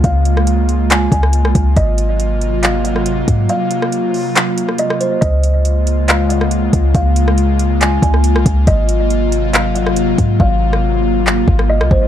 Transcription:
<<
  \new Staff \with { instrumentName = "Kalimba" } { \time 4/4 \key des \major \tempo 4 = 139 f''2 aes''8 aes''8 r4 | ees''2 f''8 ges''8 r4 | f''2 r4 ees''8 c''8 | ees''2 f''8 ges''8 r4 |
f''2 aes''8 aes''8 r4 | ees''2 f''8 ges''8 r4 | f''2 r4 ees''8 c''8 | }
  \new Staff \with { instrumentName = "Analog synth pad" } { \clef bass \time 4/4 \key des \major << { <bes f'>1 | <bes f'>1~ | <bes f'>1 | <bes f'>1~ |
<bes f'>1~ | <bes f'>1~ | <bes f'>1 | } \\ { <des aes>1 | <c ges>1~ | <c ges>1 | <des aes>1~ |
<des aes>1 | <c ges>1~ | <c ges>1 | } >> }
  \new Staff \with { instrumentName = "808-style bass" } { \clef bass \time 4/4 \key des \major des,2~ des,8 des,8. c,16 des,8 | aes,,2.~ aes,,8 aes,8 | r1 | des,2.~ des,8 des,8 |
des,2~ des,8 des,8. c,16 des,8 | aes,,2.~ aes,,8 aes,8 | aes,,2~ aes,,8 aes,,8. c,16 aes,,8 | }
  \new DrumStaff \with { instrumentName = "Drums" } \drummode { \time 4/4 <hh bd>8 hh16 ss16 hh8 hh8 <hc hh>8 <hh bd>16 ss16 hh16 ss16 <hh bd>8 | <hh bd>8 hh8 hh8 hh8 <hc hh>8 hh16 ss16 hh8 <hh bd>8 | hh8 hh16 ss16 hh8 hho8 <hc hh>8 hh16 ss16 hh16 ss16 hh8 | <hh bd>8 hh8 hh8 hh8 <hc hh>8 hh16 ss16 hh8 <hh bd>8 |
<hh bd>8 hh16 ss16 hh8 hh8 <hc hh>8 <hh bd>16 ss16 hh16 ss16 <hh bd>8 | <hh bd>8 hh8 hh8 hh8 <hc hh>8 hh16 ss16 hh8 <hh bd>8 | bd8. ss16 r4 hc8 bd16 ss16 r16 ss16 bd8 | }
>>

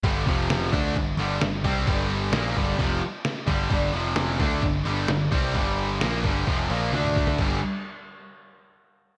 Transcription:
<<
  \new Staff \with { instrumentName = "Distorted electric guitar" } { \clef bass \time 4/4 \key g \minor \tempo 4 = 130 <g, d g>8 <f, c f>4 <d a d'>8 <g, d>8 <g, d g>8 <g, d>8 <c g c'>8 | <g, d g>4 <bes, f bes>8 <g, d g>8 <f, c f>8 r4 <g, d g>8 | <g, d g>8 <f, c f>4 <d a d'>8 <g, d>8 <g, d g>8 <g, d>8 <c g c'>8 | <g, d g>4 <bes, f bes>8 <g, d g>8 <f, c f>8 <bes, f bes>8 <d a d'>4 |
<g, d g>8 r2. r8 | }
  \new Staff \with { instrumentName = "Distorted electric guitar" } { \clef bass \time 4/4 \key g \minor <g, d g>8 <f, c f>4 <d a d'>8 <g, d>8 <g, d g>8 <g, d>8 <c g c'>8 | <g, d g>4 <bes, f bes>8 <g, d g>8 <f, c f>8 r4 <g, d g>8 | <g, d g>8 <f, c f>4 <d a d'>8 <g, d>8 <g, d g>8 <g, d>8 <c g c'>8 | <g, d g>4 <bes, f bes>8 <g, d g>8 <f, c f>8 <bes, f bes>8 <d a d'>4 |
<g, d g>8 r2. r8 | }
  \new Staff \with { instrumentName = "Overdriven electric guitar" } { \clef bass \time 4/4 \key g \minor <g, d g>8 <f, c f>4 <d a d'>8 <g, d>8 <g, d g>8 <g, d>8 <c g c'>8 | <g, d g>4 <bes, f bes>8 <g, d g>8 <f, c f>8 r4 <g, d g>8 | <g, d g>8 <f, c f>4 <d a d'>8 <g, d>8 <g, d g>8 <g, d>8 <c g c'>8 | <g, d g>4 <bes, f bes>8 <g, d g>8 <f, c f>8 <bes, f bes>8 <d a d'>4 |
<g, d g>8 r2. r8 | }
  \new Staff \with { instrumentName = "Picked electric bass" } { \clef bass \time 4/4 \key g \minor g,,8 f,,4 d,8 g,,8 g,,8 g,,8 c,8 | g,,4 bes,,8 g,,8 f,,8 r4 g,,8 | g,,8 f,,4 d,8 g,,8 g,,8 g,,8 c,8 | g,,4 bes,,8 g,,8 f,,8 bes,,8 d,4 |
g,,8 r2. r8 | }
  \new DrumStaff \with { instrumentName = "Drums" } \drummode { \time 4/4 <cymc bd>8 <cymc bd>8 <cymc sn>16 sn16 <cymc bd>8 <cymc bd>8 cymc8 <cymc sn>8 <cymc bd>8 | <cymc bd>8 cymc8 <cymc sn>8 <cymc bd>8 <cymc bd>8 cymc8 <cymc sn>8 <cymc bd>8 | <cymc bd>8 cymc8 <cymc sn>16 sn16 <cymc bd>8 <cymc bd>8 cymc8 <cymc sn>8 <cymc bd>8 | <cymc bd>8 cymc8 <cymc sn>8 <cymc bd>8 <cymc bd>8 cymc8 tommh16 toml16 bd16 tomfh16 |
<cymc bd>4 r4 r4 r4 | }
>>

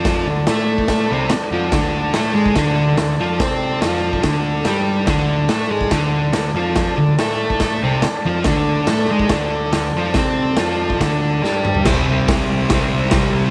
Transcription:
<<
  \new Staff \with { instrumentName = "Transistor combo organ" } { \time 4/4 \key c \lydian \tempo 4 = 142 << { r2 r8 b''8 a''8 fis''8 | r1 | r1 | r1 |
r1 | r1 | r1 | r1 | } \\ { <a' d'' a''>1 | <a' d'' a''>1~ | <a' d'' a''>1 | <a' d'' a''>1~ |
<a' d'' a''>1 | <a' d'' a''>1~ | <a' d'' a''>1 | <g' c'' e''>1 | } >> }
  \new Staff \with { instrumentName = "Distorted electric guitar" } { \time 4/4 \key c \lydian <f f'>8 d8 <a a'>4. <c c'>8 r8 <f f'>8 | <d d'>4 <a a'>8 <gis gis'>8 <d d'>4 d8 <f f'>8 | <c' c''>4 <f f'>4 <d d'>4 <g g'>4 | <d d'>4 <a a'>8 <gis gis'>8 <d d'>4 d8 <f f'>8~ |
<f f'>8 d8 <a a'>4. <c c'>8 r8 <f f'>8 | <d d'>4 <a a'>8 <gis gis'>8 <d d'>4 d8 <f f'>8 | <c' c''>4 <f f'>4 <d d'>4 <g g'>4 | <c g c'>2 <c g c'>2 | }
  \new Staff \with { instrumentName = "Picked electric bass" } { \clef bass \time 4/4 \key c \lydian f,8 d,8 a,4. c,8 r8 f,8 | d,4 a,8 gis,8 d,4 d,8 f,8 | c4 f,4 d,4 g,4 | d,4 a,8 gis,8 d,4 d,8 f,8~ |
f,8 d,8 a,4. c,8 r8 f,8 | d,4 a,8 gis,8 d,4 d,8 f,8 | c4 f,4 d,4 g,4 | c,8 c,8 c,8 c,8 c,8 c,8 c,4 | }
  \new DrumStaff \with { instrumentName = "Drums" } \drummode { \time 4/4 <hho bd sn>4 <hho sn>8. bd16 <hho bd sn>4 <hho sn>4 | <hho bd sn>4 <hho sn>8. bd16 <hho bd sn>4 <hho sn>4 | <hho bd sn>4 <hho sn>8. bd16 <hho bd sn>4 <hho sn>4 | <hho bd sn>4 <hho sn>8. bd16 <hho bd sn>4 <hho sn>4 |
<hho bd sn>4 <hho sn>8. bd16 <hho bd sn>4 <hho sn>4 | <hho bd sn>4 <hho sn>8. bd16 <hho bd sn>4 <hho sn>4 | <hho bd sn>4 <hho sn>8. bd16 <hho bd sn>4 sn8 toml16 tomfh16 | <cymc bd sn>4 <hho bd sn>4 <hho bd sn>4 <hho bd sn>4 | }
>>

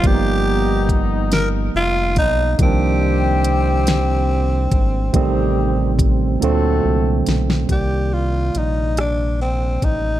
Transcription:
<<
  \new Staff \with { instrumentName = "Tenor saxophone" } { \time 6/8 \key c \dorian \tempo 4. = 47 g'4 r8 ais'8 f'8 dis'8 | c'2.~ | c'2 r4 | g'8 f'8 ees'8 d'8 c'8 ees'8 | }
  \new Staff \with { instrumentName = "Horn section" } { \time 6/8 \key c \dorian <dis b dis'>2~ <dis b dis'>8 r8 | <g ees' g'>2~ <g ees' g'>8 r8 | <g c' ees' g'>4 r8 <a c' fis' a'>4 r8 | r2. | }
  \new Staff \with { instrumentName = "Tine electric piano" } { \clef bass \time 6/8 \key c \dorian <f g ais b d' dis'>2. | <ees f g bes d'>2. | <c ees g a c'>4. <bes, d fis a c'>4. | <c ees g bes d''>2. | }
  \new Staff \with { instrumentName = "Analog synth bass" } { \clef bass \time 6/8 \key c \dorian g,,2 f,,8 b,,8 | c,2~ c,8 aes,,8 | a,,4. d,8 c,8 b,,8 | c,4 bes,,4. a,,8 | }
  \new DrumStaff \with { instrumentName = "Drums" } \drummode { \time 6/8 <hh bd>4 <hh bd>8 <hh sn>4 <hh bd>8 | <hh bd>4 hh8 <hh sn>4 <hh bd>8 | <hh bd>4 <hh bd>8 hh4 <hh sn>16 sn16 | <hh bd>4 hh8 <hh ss>4 <hh bd>8 | }
>>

